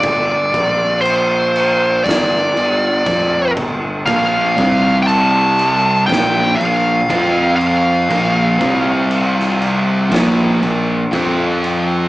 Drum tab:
CC |x-x-x-x-x-x-x-x-|x-x-x-x-x-x-x-x-|x-x-x-x-x-x-x-x-|
SD |--------o-------|--------o-------|-----o--o-------|
BD |o-o-----o---o-o-|o-o-----o---o---|o-o-----o---o---|